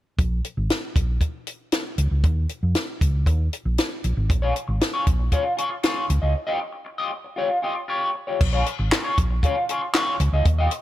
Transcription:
0.19 0.39 A#1 loud
0.19 kick medium
0.19 closed hi-hat medium
0.45 closed hi-hat medium
0.57 0.68 G#1 medium
0.70 snare medium
0.70 closed hi-hat medium
0.96 1.17 A#1 medium
0.96 kick medium
0.96 closed hi-hat medium
1.21 kick medium
1.21 closed hi-hat medium
1.47 closed hi-hat medium
1.72 snare medium
1.72 closed hi-hat medium
1.98 2.09 C#2 medium
1.98 closed hi-hat medium
2.11 2.24 C#2 medium
2.24 2.45 D#2 loud
2.24 kick loud
2.24 closed hi-hat medium
2.49 closed hi-hat medium
2.63 2.73 F2 medium
2.75 snare medium
2.75 closed hi-hat medium
3.01 3.26 C#2 medium
3.01 kick medium
3.01 closed hi-hat medium
3.26 3.47 D#2 medium
3.26 kick medium
3.26 closed hi-hat medium
3.53 closed hi-hat medium
3.65 3.76 A#1 medium
3.78 snare loud
3.78 closed hi-hat medium
4.04 4.15 A#1 medium
4.04 closed hi-hat medium
4.17 4.30 G#1 medium
4.29 4.51 A#1 loud
4.29 muted clean electric guitar stroke soft
4.29 kick loud
4.29 closed hi-hat medium
4.42 4.54 F4 medium
4.42 4.54 G#4 medium
4.42 4.55 C#5 medium
4.55 muted clean electric guitar stroke soft
4.55 closed hi-hat medium
4.68 4.79 G#1 medium
4.68 muted clean electric guitar stroke soft
4.81 muted clean electric guitar stroke soft
4.81 snare loud
4.81 closed hi-hat medium
4.94 5.05 F4 medium
4.94 5.06 G#4 medium
4.94 5.06 C#5 medium
5.07 5.28 A#1 medium
5.07 muted clean electric guitar stroke soft
5.07 kick medium
5.07 closed hi-hat medium
5.19 muted clean electric guitar stroke soft
5.32 5.53 F4 medium
5.32 5.45 G#4 medium
5.32 5.44 C#5 medium
5.32 kick medium
5.32 closed hi-hat medium
5.45 muted clean electric guitar stroke soft
5.57 5.74 F4 medium
5.57 5.71 G#4 medium
5.57 5.70 C#5 medium
5.57 closed hi-hat medium
5.71 muted clean electric guitar stroke soft
5.83 6.04 F4 medium
5.83 6.05 G#4 medium
5.83 6.05 C#5 medium
5.83 snare loud
5.83 closed hi-hat medium
6.08 6.20 C#2 medium
6.08 muted clean electric guitar stroke soft
6.08 closed hi-hat medium
6.22 6.33 C#2 medium
6.22 6.33 F4 soft
6.22 6.35 G#4 soft
6.22 6.35 D#5 medium
6.35 muted clean electric guitar stroke soft
6.47 6.59 F4 medium
6.47 6.60 G4 medium
6.47 6.61 D#5 medium
6.60 muted clean electric guitar stroke soft
6.72 muted clean electric guitar stroke soft
6.85 muted clean electric guitar stroke soft
6.98 7.11 F4 medium
6.98 7.11 G4 medium
6.98 7.13 D#5 medium
7.12 muted clean electric guitar stroke soft
7.24 muted clean electric guitar stroke soft
7.36 7.58 F4 medium
7.36 7.50 G4 medium
7.36 7.48 C#5 medium
7.50 muted clean electric guitar stroke soft
7.62 7.80 F4 medium
7.62 7.75 G4 medium
7.62 7.75 D#5 medium
7.75 muted clean electric guitar stroke soft
7.88 8.09 F4 medium
7.88 8.10 G4 medium
7.88 8.10 C#5 medium
8.14 muted clean electric guitar stroke soft
8.27 8.39 F4 soft
8.27 8.41 G4 medium
8.27 8.41 C#5 medium
8.41 8.61 A#1 loud
8.41 muted clean electric guitar stroke soft
8.41 kick medium
8.41 crash medium
8.53 8.65 F4 medium
8.53 8.65 G#4 medium
8.53 8.66 C#5 medium
8.66 muted clean electric guitar stroke soft
8.66 closed hi-hat medium
8.79 8.89 G#1 medium
8.79 muted clean electric guitar stroke soft
8.92 muted clean electric guitar stroke soft
8.92 snare loud
8.92 clap medium
8.92 closed hi-hat medium
9.04 9.17 F4 medium
9.04 9.18 G#4 medium
9.04 9.18 C#5 medium
9.18 9.39 A#1 medium
9.18 muted clean electric guitar stroke soft
9.18 kick medium
9.18 closed hi-hat medium
9.31 muted clean electric guitar stroke medium
9.43 9.64 F4 medium
9.43 9.57 G#4 medium
9.43 9.56 C#5 loud
9.43 kick medium
9.43 closed hi-hat medium
9.57 muted clean electric guitar stroke soft
9.69 9.86 F4 medium
9.69 9.82 G#4 medium
9.69 9.81 C#5 medium
9.69 closed hi-hat medium
9.83 muted clean electric guitar stroke soft
9.94 10.15 F4 medium
9.94 10.15 G#4 medium
9.94 10.16 C#5 medium
9.94 snare medium
9.94 clap medium
9.94 closed hi-hat medium
10.20 10.30 C#2 medium
10.20 muted clean electric guitar stroke soft
10.20 closed hi-hat medium
10.33 10.43 C#2 medium
10.33 10.45 F4 soft
10.33 10.46 G#4 medium
10.33 10.47 D#5 medium
10.45 10.66 D#2 loud
10.45 muted clean electric guitar stroke soft
10.45 kick loud
10.45 closed hi-hat medium
10.59 10.70 F4 medium
10.59 10.71 G4 medium
10.59 10.72 D#5 loud
10.71 muted clean electric guitar stroke soft
10.71 closed hi-hat medium

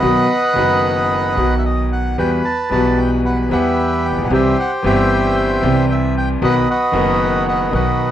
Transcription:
0.00 0.25 B1 medium
0.00 0.25 B2 medium
0.00 0.25 D#3 medium
0.00 0.25 F#3 medium
0.00 0.25 B3 medium
0.00 0.25 F#4 medium
0.00 1.54 B4 medium
0.00 1.54 D#5 medium
0.00 1.64 F#5 medium
0.53 1.33 F#1 medium
0.53 1.32 F#2 medium
0.53 1.31 D#3 medium
0.53 1.32 F#3 medium
0.53 1.33 B3 medium
0.58 1.34 F#4 medium
1.35 2.14 B1 medium
1.35 2.14 B2 medium
1.35 2.13 D#3 medium
1.35 2.13 F#3 soft
1.35 2.14 B3 soft
1.35 2.15 F#4 medium
1.59 1.65 E5 soft
1.65 1.90 D#5 medium
1.92 2.17 F#5 medium
2.18 2.40 E2 medium
2.18 2.41 E2 medium
2.18 2.41 E3 medium
2.18 2.40 G3 medium
2.18 2.41 B3 soft
2.18 2.41 F#4 medium
2.18 3.21 B4 medium
2.18 2.31 G5 medium
2.45 2.70 A5 medium
2.70 3.47 B1 medium
2.70 3.47 B2 medium
2.70 3.46 E3 medium
2.70 3.47 G3 medium
2.70 3.48 B3 medium
2.70 2.99 A5 medium
2.74 3.49 F#4 medium
2.99 3.10 G5 medium
3.25 3.50 B4 soft
3.25 3.37 F#5 medium
3.49 4.10 E2 medium
3.49 4.27 E2 medium
3.49 3.50 E3 medium
3.49 4.27 E3 medium
3.49 4.27 G3 medium
3.49 4.27 B3 medium
3.49 4.27 G4 medium
3.49 4.27 B4 medium
3.49 4.06 E5 medium
3.53 4.28 F#5 medium
4.06 4.24 G5 medium
4.11 4.16 A1 soft
4.11 4.18 A1 soft
4.17 4.23 A#1 medium
4.17 4.24 A#1 medium
4.23 4.30 B1 medium
4.23 4.31 B1 medium
4.23 4.31 F#5 medium
4.30 4.53 C2 medium
4.30 4.53 C3 medium
4.30 4.53 E3 medium
4.30 4.53 G3 medium
4.30 4.53 C4 medium
4.30 4.54 G4 medium
4.30 5.34 G4 medium
4.30 4.84 C5 medium
4.30 4.57 E5 medium
4.60 4.71 F#5 medium
4.82 5.59 G1 medium
4.82 5.59 G2 medium
4.82 5.58 E3 medium
4.82 5.59 G3 medium
4.82 5.60 C4 medium
4.82 5.60 G4 medium
4.82 5.86 C5 medium
4.82 5.86 E5 medium
4.82 5.93 G5 medium
5.61 6.37 C2 medium
5.61 6.38 C2 medium
5.61 6.38 C3 medium
5.61 6.37 E3 medium
5.61 6.37 G3 medium
5.61 6.38 C4 medium
5.61 6.39 G4 medium
5.92 6.15 E5 medium
6.17 6.29 G5 medium
6.42 6.64 B1 medium
6.42 6.64 B2 medium
6.42 6.64 D#3 medium
6.42 6.64 F#3 medium
6.42 6.64 B3 medium
6.42 6.64 F#4 medium
6.42 6.69 B4 medium
6.42 6.69 D#5 medium
6.42 6.55 F#5 medium
6.70 7.70 F#4 medium
6.70 7.47 B4 medium
6.70 7.44 D#5 medium
6.92 7.68 F#1 medium
6.92 7.68 F#2 medium
6.92 7.68 D#3 medium
6.92 7.68 F#3 medium
6.92 7.69 B3 medium
6.92 7.69 F#4 medium
7.48 7.73 B4 medium
7.48 7.73 D#5 medium
7.48 7.60 F#5 medium
7.71 8.11 B1 medium
7.71 8.11 B2 medium
7.71 8.11 D#3 medium
7.71 8.11 F#3 medium
7.71 8.11 B3 medium
7.71 8.11 F#4 medium
7.71 8.11 B4 medium
7.71 8.10 D#5 medium

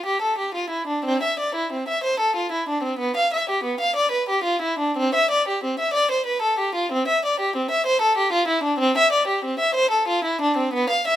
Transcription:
0.06 0.23 G4 medium
0.22 0.39 A4 medium
0.38 0.55 G4 medium
0.54 0.72 F4 medium
0.70 0.87 E4 medium
0.87 1.04 D4 medium
1.05 1.21 C4 medium
1.23 1.38 E5 medium
1.39 1.55 D5 medium
1.55 1.71 E4 medium
1.73 1.88 C4 medium
1.88 2.03 E5 medium
2.04 2.19 C5 medium
2.20 2.35 A4 medium
2.36 2.51 F4 medium
2.52 2.67 E4 medium
2.69 2.83 D4 medium
2.83 2.98 C4 medium
2.99 3.14 B3 medium
3.16 3.31 F5 medium
3.34 3.48 E5 medium
3.50 3.64 G4 medium
3.64 3.79 B3 medium
3.80 3.95 F5 medium
3.96 4.11 D5 medium
4.11 4.27 B4 medium
4.29 4.45 G4 medium
4.44 4.61 F4 medium
4.62 4.79 E4 medium
4.79 4.96 D4 medium
4.97 5.14 C4 medium
5.15 5.31 E5 medium
5.31 5.47 D5 medium
5.48 5.63 G4 medium
5.64 5.79 C4 medium
5.79 5.95 E5 medium
5.94 6.10 D5 medium
6.11 6.27 C5 medium
6.26 6.42 B4 medium
6.42 6.58 A4 medium
6.59 6.75 G4 medium
6.75 6.91 F4 medium
6.92 7.07 C4 medium
7.08 7.23 E5 medium
7.25 7.40 D5 medium
7.40 7.55 G4 medium
7.56 7.71 C4 medium
7.71 7.86 E5 medium
7.86 8.02 C5 medium
8.02 8.17 A4 medium
8.17 8.33 G4 medium
8.33 8.48 F4 medium
8.48 8.63 E4 medium
8.63 8.79 D4 medium
8.78 8.94 C4 loud
8.98 9.12 E5 medium
9.12 9.27 D5 medium
9.27 9.43 G4 medium
9.45 9.60 C4 medium
9.59 9.75 E5 medium
9.75 9.91 C5 medium
9.91 10.07 A4 medium
10.08 10.24 F4 medium
10.24 10.40 E4 medium
10.41 10.57 D4 medium
10.57 10.73 C4 medium
10.73 10.90 B3 medium
10.90 11.06 F5 medium
11.08 11.16 E5 medium

